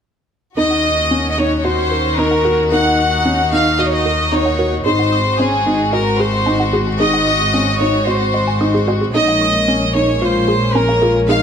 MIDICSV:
0, 0, Header, 1, 6, 480
1, 0, Start_track
1, 0, Tempo, 535714
1, 514, Time_signature, 4, 2, 24, 8
1, 10237, End_track
2, 0, Start_track
2, 0, Title_t, "Synth arpeggio sound"
2, 0, Program_c, 0, 84
2, 511, Note_on_c, 0, 70, 88
2, 554, Note_off_c, 0, 70, 0
2, 632, Note_on_c, 0, 78, 65
2, 702, Note_off_c, 0, 78, 0
2, 754, Note_on_c, 0, 87, 68
2, 857, Note_off_c, 0, 87, 0
2, 997, Note_on_c, 0, 75, 64
2, 1064, Note_off_c, 0, 75, 0
2, 1476, Note_on_c, 0, 75, 93
2, 1516, Note_off_c, 0, 75, 0
2, 1715, Note_on_c, 0, 70, 86
2, 1783, Note_off_c, 0, 70, 0
2, 1956, Note_on_c, 0, 82, 78
2, 2024, Note_off_c, 0, 82, 0
2, 2071, Note_on_c, 0, 78, 85
2, 2114, Note_off_c, 0, 78, 0
2, 2193, Note_on_c, 0, 70, 91
2, 2263, Note_off_c, 0, 70, 0
2, 2437, Note_on_c, 0, 70, 90
2, 2477, Note_off_c, 0, 70, 0
2, 2554, Note_on_c, 0, 78, 70
2, 2623, Note_off_c, 0, 78, 0
2, 2676, Note_on_c, 0, 87, 65
2, 2779, Note_off_c, 0, 87, 0
2, 2918, Note_on_c, 0, 75, 65
2, 2985, Note_off_c, 0, 75, 0
2, 3396, Note_on_c, 0, 75, 94
2, 3436, Note_off_c, 0, 75, 0
2, 3633, Note_on_c, 0, 70, 89
2, 3702, Note_off_c, 0, 70, 0
2, 3874, Note_on_c, 0, 82, 77
2, 3943, Note_off_c, 0, 82, 0
2, 3992, Note_on_c, 0, 78, 83
2, 4034, Note_off_c, 0, 78, 0
2, 4112, Note_on_c, 0, 70, 92
2, 4182, Note_off_c, 0, 70, 0
2, 4352, Note_on_c, 0, 68, 86
2, 4394, Note_off_c, 0, 68, 0
2, 4473, Note_on_c, 0, 78, 70
2, 4543, Note_off_c, 0, 78, 0
2, 4591, Note_on_c, 0, 87, 66
2, 4696, Note_off_c, 0, 87, 0
2, 4835, Note_on_c, 0, 75, 67
2, 4904, Note_off_c, 0, 75, 0
2, 5312, Note_on_c, 0, 75, 90
2, 5354, Note_off_c, 0, 75, 0
2, 5553, Note_on_c, 0, 68, 92
2, 5623, Note_off_c, 0, 68, 0
2, 5790, Note_on_c, 0, 80, 81
2, 5861, Note_off_c, 0, 80, 0
2, 5911, Note_on_c, 0, 78, 85
2, 5954, Note_off_c, 0, 78, 0
2, 6031, Note_on_c, 0, 68, 88
2, 6102, Note_off_c, 0, 68, 0
2, 6271, Note_on_c, 0, 68, 91
2, 6314, Note_off_c, 0, 68, 0
2, 6392, Note_on_c, 0, 78, 64
2, 6462, Note_off_c, 0, 78, 0
2, 6512, Note_on_c, 0, 87, 68
2, 6617, Note_off_c, 0, 87, 0
2, 6753, Note_on_c, 0, 75, 69
2, 6822, Note_off_c, 0, 75, 0
2, 7231, Note_on_c, 0, 75, 92
2, 7274, Note_off_c, 0, 75, 0
2, 7474, Note_on_c, 0, 75, 90
2, 7578, Note_off_c, 0, 75, 0
2, 7594, Note_on_c, 0, 80, 90
2, 7663, Note_off_c, 0, 80, 0
2, 7713, Note_on_c, 0, 87, 77
2, 7755, Note_off_c, 0, 87, 0
2, 7834, Note_on_c, 0, 68, 90
2, 7938, Note_off_c, 0, 68, 0
2, 7957, Note_on_c, 0, 75, 90
2, 8024, Note_off_c, 0, 75, 0
2, 8076, Note_on_c, 0, 68, 70
2, 8116, Note_off_c, 0, 68, 0
2, 8198, Note_on_c, 0, 68, 90
2, 8238, Note_off_c, 0, 68, 0
2, 8314, Note_on_c, 0, 77, 66
2, 8383, Note_off_c, 0, 77, 0
2, 8435, Note_on_c, 0, 85, 70
2, 8538, Note_off_c, 0, 85, 0
2, 8675, Note_on_c, 0, 73, 65
2, 8744, Note_off_c, 0, 73, 0
2, 9153, Note_on_c, 0, 73, 90
2, 9195, Note_off_c, 0, 73, 0
2, 9391, Note_on_c, 0, 68, 90
2, 9461, Note_off_c, 0, 68, 0
2, 9635, Note_on_c, 0, 80, 84
2, 9704, Note_off_c, 0, 80, 0
2, 9754, Note_on_c, 0, 77, 83
2, 9795, Note_off_c, 0, 77, 0
2, 9876, Note_on_c, 0, 68, 91
2, 9944, Note_off_c, 0, 68, 0
2, 10116, Note_on_c, 0, 68, 85
2, 10156, Note_off_c, 0, 68, 0
2, 10237, End_track
3, 0, Start_track
3, 0, Title_t, "Violin section"
3, 0, Program_c, 1, 48
3, 519, Note_on_c, 1, 75, 75
3, 1141, Note_off_c, 1, 75, 0
3, 1174, Note_on_c, 1, 75, 55
3, 1234, Note_off_c, 1, 75, 0
3, 1241, Note_on_c, 1, 73, 71
3, 1401, Note_off_c, 1, 73, 0
3, 1411, Note_on_c, 1, 73, 56
3, 1474, Note_off_c, 1, 73, 0
3, 1476, Note_on_c, 1, 72, 72
3, 1951, Note_on_c, 1, 70, 70
3, 1955, Note_off_c, 1, 72, 0
3, 2312, Note_off_c, 1, 70, 0
3, 2439, Note_on_c, 1, 78, 91
3, 3121, Note_off_c, 1, 78, 0
3, 3157, Note_on_c, 1, 77, 81
3, 3395, Note_off_c, 1, 77, 0
3, 3398, Note_on_c, 1, 75, 74
3, 3453, Note_on_c, 1, 73, 63
3, 3459, Note_off_c, 1, 75, 0
3, 3517, Note_on_c, 1, 75, 75
3, 3518, Note_off_c, 1, 73, 0
3, 3873, Note_off_c, 1, 75, 0
3, 3874, Note_on_c, 1, 73, 77
3, 4234, Note_off_c, 1, 73, 0
3, 4350, Note_on_c, 1, 72, 80
3, 4798, Note_off_c, 1, 72, 0
3, 4828, Note_on_c, 1, 68, 75
3, 5311, Note_off_c, 1, 68, 0
3, 5312, Note_on_c, 1, 70, 69
3, 5536, Note_off_c, 1, 70, 0
3, 5549, Note_on_c, 1, 72, 68
3, 6032, Note_off_c, 1, 72, 0
3, 6271, Note_on_c, 1, 75, 85
3, 6956, Note_off_c, 1, 75, 0
3, 6999, Note_on_c, 1, 73, 78
3, 7237, Note_off_c, 1, 73, 0
3, 7244, Note_on_c, 1, 72, 68
3, 7959, Note_off_c, 1, 72, 0
3, 8196, Note_on_c, 1, 75, 88
3, 8879, Note_off_c, 1, 75, 0
3, 8917, Note_on_c, 1, 73, 78
3, 9153, Note_on_c, 1, 72, 76
3, 9155, Note_off_c, 1, 73, 0
3, 9626, Note_on_c, 1, 70, 77
3, 9633, Note_off_c, 1, 72, 0
3, 9990, Note_off_c, 1, 70, 0
3, 10106, Note_on_c, 1, 77, 99
3, 10237, Note_off_c, 1, 77, 0
3, 10237, End_track
4, 0, Start_track
4, 0, Title_t, "Felt piano"
4, 0, Program_c, 2, 0
4, 514, Note_on_c, 2, 63, 70
4, 756, Note_off_c, 2, 63, 0
4, 994, Note_on_c, 2, 61, 60
4, 1115, Note_off_c, 2, 61, 0
4, 1235, Note_on_c, 2, 63, 56
4, 1355, Note_off_c, 2, 63, 0
4, 1475, Note_on_c, 2, 66, 67
4, 1716, Note_off_c, 2, 66, 0
4, 1954, Note_on_c, 2, 63, 68
4, 2075, Note_off_c, 2, 63, 0
4, 2194, Note_on_c, 2, 66, 68
4, 2315, Note_off_c, 2, 66, 0
4, 2434, Note_on_c, 2, 63, 69
4, 2675, Note_off_c, 2, 63, 0
4, 2914, Note_on_c, 2, 61, 65
4, 3035, Note_off_c, 2, 61, 0
4, 3155, Note_on_c, 2, 63, 60
4, 3275, Note_off_c, 2, 63, 0
4, 3393, Note_on_c, 2, 66, 66
4, 3634, Note_off_c, 2, 66, 0
4, 3874, Note_on_c, 2, 63, 65
4, 3995, Note_off_c, 2, 63, 0
4, 4111, Note_on_c, 2, 66, 66
4, 4232, Note_off_c, 2, 66, 0
4, 4356, Note_on_c, 2, 63, 74
4, 4596, Note_off_c, 2, 63, 0
4, 4834, Note_on_c, 2, 61, 64
4, 4954, Note_off_c, 2, 61, 0
4, 5074, Note_on_c, 2, 63, 65
4, 5194, Note_off_c, 2, 63, 0
4, 5313, Note_on_c, 2, 66, 67
4, 5554, Note_off_c, 2, 66, 0
4, 5794, Note_on_c, 2, 63, 65
4, 5915, Note_off_c, 2, 63, 0
4, 6035, Note_on_c, 2, 66, 69
4, 6155, Note_off_c, 2, 66, 0
4, 6275, Note_on_c, 2, 63, 74
4, 6516, Note_off_c, 2, 63, 0
4, 6755, Note_on_c, 2, 61, 63
4, 6875, Note_off_c, 2, 61, 0
4, 6993, Note_on_c, 2, 63, 64
4, 7114, Note_off_c, 2, 63, 0
4, 7232, Note_on_c, 2, 66, 64
4, 7474, Note_off_c, 2, 66, 0
4, 7712, Note_on_c, 2, 63, 63
4, 7833, Note_off_c, 2, 63, 0
4, 7952, Note_on_c, 2, 66, 68
4, 8073, Note_off_c, 2, 66, 0
4, 8192, Note_on_c, 2, 63, 77
4, 8434, Note_off_c, 2, 63, 0
4, 8674, Note_on_c, 2, 61, 63
4, 8795, Note_off_c, 2, 61, 0
4, 8915, Note_on_c, 2, 63, 64
4, 9035, Note_off_c, 2, 63, 0
4, 9153, Note_on_c, 2, 65, 68
4, 9394, Note_off_c, 2, 65, 0
4, 9632, Note_on_c, 2, 61, 68
4, 9753, Note_off_c, 2, 61, 0
4, 9871, Note_on_c, 2, 65, 69
4, 9992, Note_off_c, 2, 65, 0
4, 10112, Note_on_c, 2, 63, 75
4, 10237, Note_off_c, 2, 63, 0
4, 10237, End_track
5, 0, Start_track
5, 0, Title_t, "String section"
5, 0, Program_c, 3, 48
5, 513, Note_on_c, 3, 66, 67
5, 515, Note_on_c, 3, 51, 60
5, 515, Note_on_c, 3, 61, 54
5, 2415, Note_off_c, 3, 61, 0
5, 2440, Note_on_c, 3, 63, 56
5, 4317, Note_off_c, 3, 66, 0
5, 4319, Note_off_c, 3, 51, 0
5, 4338, Note_off_c, 3, 63, 0
5, 4354, Note_on_c, 3, 56, 63
5, 4354, Note_on_c, 3, 66, 70
5, 4356, Note_on_c, 3, 60, 54
5, 8158, Note_off_c, 3, 66, 0
5, 8159, Note_off_c, 3, 60, 0
5, 8200, Note_on_c, 3, 61, 66
5, 8201, Note_on_c, 3, 58, 60
5, 10237, Note_off_c, 3, 56, 0
5, 10237, Note_off_c, 3, 58, 0
5, 10237, Note_off_c, 3, 61, 0
5, 10237, End_track
6, 0, Start_track
6, 0, Title_t, "Double bass section"
6, 0, Program_c, 4, 48
6, 511, Note_on_c, 4, 39, 66
6, 4328, Note_off_c, 4, 39, 0
6, 4355, Note_on_c, 4, 32, 76
6, 8170, Note_off_c, 4, 32, 0
6, 8194, Note_on_c, 4, 34, 70
6, 10237, Note_off_c, 4, 34, 0
6, 10237, End_track
0, 0, End_of_file